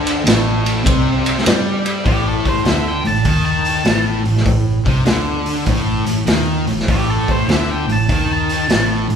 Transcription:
Already playing: D2 D3
0.07 ride
0.25 A1 A2, snare, ride
0.66 ride
0.84 C2 C3, kick, ride
1.26 ride
1.38 snare
1.44 G2 G3, snare, ride
1.86 ride
2.05 A1 A2 G4, kick, open hi-hat
2.28 A4
2.45 C5, kick, open hi-hat
2.65 D2 D3, snare, open hi-hat
2.69 E5
2.88 G5
3.05 A1 A2 A5, open hi-hat
3.25 D#2 D#3, kick, open hi-hat
3.46 A5
3.65 open hi-hat
3.85 A1 A2, snare, open hi-hat
4.24 A1 A2, open hi-hat
4.37 snare
4.45 A1 A2, kick, open hi-hat
4.85 C2 C3, kick, open hi-hat
5.05 D2 D3, snare, open hi-hat
5.46 open hi-hat
5.66 A1 A2, kick, open hi-hat
6.06 A1 A2, open hi-hat
6.26 D#2 D#3, snare, open hi-hat
6.67 A1 A2, open hi-hat
6.79 snare
6.88 A1 A2 G4, kick, open hi-hat
7.11 A4
7.28 C5, kick, open hi-hat
7.48 D2 D3 E5, snare, open hi-hat
7.71 G5
7.88 A1 A2, open hi-hat
7.92 A5
8.09 D#2 D#3, kick, open hi-hat
8.33 A5
8.49 open hi-hat
8.69 A1 A2, snare, open hi-hat
9.09 A1 A2, open hi-hat

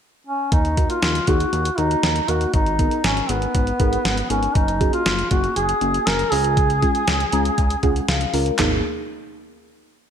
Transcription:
0.27 C#4
0.52 D#2 D#4, kick, closed hi-hat
0.65 closed hi-hat
0.77 A#3 D#4 F#4 A#4, kick, closed hi-hat
0.90 F4, closed hi-hat
1.02 D#2, snare, closed hi-hat
1.15 closed hi-hat
1.27 D#2 A#3 D#4 F#4 G#4, kick, closed hi-hat
1.40 closed hi-hat
1.53 D#2, closed hi-hat
1.65 closed hi-hat
1.78 D#2 A#3 D#4 F#4 A#4, closed hi-hat
1.91 closed hi-hat
2.03 D#2, snare, closed hi-hat
2.16 closed hi-hat
2.28 D#2 A#3 D#4 F#4 A#4, closed hi-hat
2.41 closed hi-hat
2.54 G#1 D#4, kick, closed hi-hat
2.66 closed hi-hat
2.79 B3 D#4 G#4 A#4, kick, closed hi-hat
2.91 closed hi-hat
3.04 G#1 C#4, snare, closed hi-hat
3.17 closed hi-hat
3.29 G#1 B3 D#4 G#4 A#4, closed hi-hat
3.42 closed hi-hat
3.55 G#1, kick, closed hi-hat
3.67 closed hi-hat
3.80 G#1 B3 D#4 G#4 A#4, kick, closed hi-hat
3.93 closed hi-hat
4.05 G#1, snare, closed hi-hat
4.17 closed hi-hat
4.30 G#1 B3 C#4 D#4 G#4 A#4, closed hi-hat
4.43 closed hi-hat
4.55 F#1 D#4, kick, closed hi-hat
4.68 closed hi-hat
4.81 A#3 C#4 F#4 G#4, kick, closed hi-hat
4.93 F4, closed hi-hat
5.06 F#1, snare, closed hi-hat
5.19 closed hi-hat
5.31 F#1 A#3 C#4 F#4 G#4, kick, closed hi-hat
5.44 closed hi-hat
5.56 F#1 G#4, closed hi-hat
5.69 closed hi-hat
5.81 F#1 A#3 C#4 F#4 G#4, closed hi-hat
5.94 closed hi-hat
6.07 F#1 A#4, snare, closed hi-hat
6.19 closed hi-hat
6.32 C#2 G#3 C#4 F4 G#4, open hi-hat
6.44 closed hi-hat
6.57 kick, closed hi-hat
6.70 closed hi-hat
6.82 G#3 C#4 F4 G#4, kick, closed hi-hat
6.95 closed hi-hat
7.08 C#2, snare, closed hi-hat
7.20 closed hi-hat
7.33 C#2 G#3 C#4 F4 G#4 A#5, closed hi-hat
7.45 closed hi-hat
7.58 C#2 G#5, kick, closed hi-hat
7.70 closed hi-hat
7.83 C#2 G#3 C#4 F4 G#4 F#5, kick, closed hi-hat
7.96 closed hi-hat
8.08 C#2 F5, snare, closed hi-hat
8.21 closed hi-hat
8.34 C#2 G#3 C#4 F4 A#4, open hi-hat
8.46 closed hi-hat
8.59 G#1 A#3 B3 D#4 G#4, snare, clap, floor tom

